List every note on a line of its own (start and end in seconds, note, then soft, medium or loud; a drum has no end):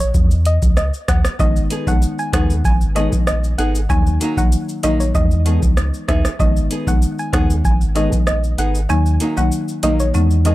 0.00 0.12 A#1 medium
0.00 0.10 C#5 medium
0.00 shaker medium
0.14 0.58 E2 loud
0.14 kick loud
0.14 shaker medium
0.31 shaker medium
0.45 0.58 D#5 medium
0.45 closed hi-hat medium
0.45 shaker soft
0.62 0.91 C#2 medium
0.62 kick medium
0.62 shaker medium
0.77 0.89 D#5 medium
0.77 cross-stick medium
0.77 shaker medium
0.94 shaker soft
1.08 1.24 D#2 medium
1.08 1.20 F#5 medium
1.08 kick medium
1.08 cross-stick medium
1.08 closed hi-hat medium
1.08 shaker medium
1.25 cross-stick medium
1.25 shaker medium
1.39 1.68 G#1 loud
1.39 1.56 D#3 medium
1.39 1.56 G#3 medium
1.39 1.56 B3 medium
1.39 1.56 D#4 medium
1.39 1.61 D#5 loud
1.39 kick loud
1.39 shaker medium
1.56 shaker medium
1.70 1.89 B3 medium
1.70 1.90 D#4 medium
1.70 1.90 G#4 medium
1.70 closed hi-hat medium
1.70 shaker medium
1.87 2.01 B1 medium
1.87 2.02 D#3 medium
1.87 2.02 G#3 medium
1.87 2.02 B3 medium
1.87 2.02 D#4 medium
1.87 1.98 F#5 medium
1.87 kick medium
1.87 shaker medium
2.02 shaker medium
2.19 2.29 G#5 medium
2.19 shaker soft
2.33 2.62 D#2 medium
2.33 2.49 D#3 medium
2.33 2.50 G#3 medium
2.33 2.52 B3 medium
2.33 2.50 B3 medium
2.33 2.50 D#4 medium
2.33 2.52 D#4 medium
2.33 2.53 G#4 medium
2.33 2.45 F#5 medium
2.33 kick medium
2.33 cross-stick medium
2.33 closed hi-hat medium
2.33 shaker medium
2.50 shaker medium
2.65 3.09 G#1 medium
2.65 2.76 G#5 medium
2.65 kick loud
2.65 shaker medium
2.81 shaker medium
2.95 3.12 D#3 medium
2.95 3.12 G#3 medium
2.95 3.14 B3 medium
2.95 3.12 B3 medium
2.95 3.12 D#4 medium
2.95 3.11 G#4 medium
2.95 3.07 D#5 medium
2.95 closed hi-hat medium
2.95 shaker soft
3.12 3.55 A#1 medium
3.12 muted nylon-string guitar stroke soft
3.12 kick medium
3.12 shaker medium
3.27 3.39 D#5 medium
3.27 cross-stick medium
3.27 shaker medium
3.44 shaker soft
3.58 3.87 G#1 medium
3.58 3.77 B3 medium
3.58 3.77 D#4 medium
3.58 3.77 G#4 medium
3.58 3.70 F#5 medium
3.58 closed hi-hat medium
3.58 shaker soft
3.75 shaker medium
3.89 4.18 D#2 loud
3.89 4.06 D#3 medium
3.89 4.06 F#3 medium
3.89 4.06 A#3 medium
3.89 4.06 D#4 loud
3.89 4.11 G#5 loud
3.89 kick loud
3.89 shaker medium
4.07 shaker medium
4.20 4.39 F#3 medium
4.20 4.40 A#3 loud
4.20 4.40 D#4 medium
4.20 closed hi-hat medium
4.20 shaker medium
4.37 4.51 B1 loud
4.37 4.52 D#3 medium
4.37 4.52 F#3 medium
4.37 4.52 A#3 medium
4.37 4.52 D#4 medium
4.37 4.48 F#5 medium
4.37 kick medium
4.37 shaker medium
4.52 shaker medium
4.69 shaker soft
4.83 5.12 A#1 medium
4.83 5.00 D#3 medium
4.83 5.02 F#3 medium
4.83 5.00 F#3 medium
4.83 5.00 A#3 medium
4.83 5.02 A#3 medium
4.83 5.00 D#4 medium
4.83 5.03 D#4 loud
4.83 4.95 D#5 medium
4.83 closed hi-hat medium
4.83 shaker medium
5.00 5.10 C#5 medium
5.00 shaker medium
5.14 5.59 E2 loud
5.14 5.43 E3 medium
5.14 5.44 G#3 medium
5.14 5.44 B3 medium
5.14 5.44 D#4 medium
5.14 5.60 D#5 loud
5.14 kick loud
5.14 shaker medium
5.31 shaker soft
5.45 5.62 E3 medium
5.45 5.62 G#3 medium
5.45 5.64 B3 medium
5.45 5.62 B3 medium
5.45 5.62 D#4 medium
5.45 5.61 G#4 medium
5.45 closed hi-hat medium
5.45 shaker soft
5.62 5.91 C#2 medium
5.62 muted nylon-string guitar stroke soft
5.62 kick medium
5.62 shaker medium
5.77 cross-stick medium
5.77 shaker medium
5.94 shaker soft
6.08 6.24 D#2 medium
6.08 6.27 B3 medium
6.08 6.27 D#4 medium
6.08 6.27 G#4 medium
6.08 6.20 E5 medium
6.08 kick medium
6.08 cross-stick medium
6.08 closed hi-hat medium
6.08 shaker medium
6.25 cross-stick medium
6.25 shaker medium
6.39 6.68 G#1 loud
6.39 6.56 D#3 medium
6.39 6.56 G#3 medium
6.39 6.56 B3 medium
6.39 6.56 D#4 loud
6.39 6.61 D#5 loud
6.39 kick loud
6.39 shaker medium
6.57 shaker medium
6.70 6.89 B3 medium
6.70 6.90 D#4 medium
6.70 6.90 G#4 medium
6.70 closed hi-hat medium
6.70 shaker medium
6.87 7.01 B1 loud
6.87 7.02 D#3 medium
6.87 7.02 G#3 medium
6.87 7.02 B3 medium
6.87 7.02 D#4 medium
6.87 6.98 F#5 medium
6.87 kick medium
6.87 shaker medium
7.02 shaker medium
7.19 7.29 G#5 medium
7.19 shaker soft
7.33 7.62 D#2 medium
7.33 7.49 D#3 medium
7.33 7.50 G#3 medium
7.33 7.52 B3 medium
7.33 7.50 B3 medium
7.33 7.50 D#4 medium
7.33 7.52 D#4 medium
7.33 7.52 G#4 loud
7.33 7.45 F#5 medium
7.33 kick medium
7.33 cross-stick medium
7.33 closed hi-hat medium
7.33 shaker medium
7.50 shaker medium
7.65 8.09 G#1 loud
7.65 7.76 G#5 medium
7.65 kick loud
7.65 shaker medium
7.81 shaker medium
7.95 8.12 D#3 medium
7.95 8.12 G#3 medium
7.95 8.14 B3 medium
7.95 8.12 B3 medium
7.95 8.12 D#4 medium
7.95 8.11 G#4 medium
7.95 8.08 D#5 medium
7.95 closed hi-hat medium
7.95 shaker soft
8.12 8.55 A#1 medium
8.12 muted nylon-string guitar stroke soft
8.12 kick medium
8.12 shaker medium
8.27 8.39 D#5 medium
8.27 cross-stick medium
8.27 shaker medium
8.44 shaker soft
8.58 8.87 G#1 medium
8.58 8.77 B3 medium
8.58 8.77 D#4 medium
8.58 8.77 G#4 medium
8.58 8.70 F#5 medium
8.58 closed hi-hat medium
8.58 shaker soft
8.75 shaker medium
8.89 9.18 D#2 loud
8.89 9.06 D#3 medium
8.89 9.06 F#3 medium
8.89 9.06 A#3 medium
8.89 9.06 D#4 loud
8.89 9.11 G#5 loud
8.89 shaker medium
9.06 shaker medium
9.20 9.39 F#3 medium
9.20 9.40 A#3 loud
9.20 9.40 D#4 loud
9.20 closed hi-hat medium
9.20 shaker medium
9.37 9.51 B1 medium
9.37 9.52 D#3 medium
9.37 9.52 F#3 medium
9.37 9.52 A#3 medium
9.37 9.52 D#4 medium
9.37 9.48 F#5 medium
9.37 shaker medium
9.52 shaker medium
9.68 shaker medium
9.83 10.12 A#1 medium
9.83 9.99 D#3 medium
9.83 10.02 F#3 medium
9.83 10.00 F#3 medium
9.83 10.00 A#3 medium
9.83 10.02 A#3 medium
9.83 10.00 D#4 medium
9.83 10.02 D#4 medium
9.83 9.95 D#5 medium
9.83 closed hi-hat medium
9.83 shaker medium
10.00 10.10 C#5 medium
10.00 shaker medium
10.14 10.55 E2 loud
10.14 10.43 E3 medium
10.14 10.43 G#3 medium
10.14 10.43 B3 medium
10.14 10.43 D#4 loud
10.14 shaker medium
10.31 shaker soft
10.45 10.55 E3 medium
10.45 10.55 G#3 medium
10.45 10.55 B3 medium
10.45 10.55 D#4 medium
10.45 10.55 G#4 medium
10.45 10.55 D#5 medium
10.45 closed hi-hat medium
10.45 shaker medium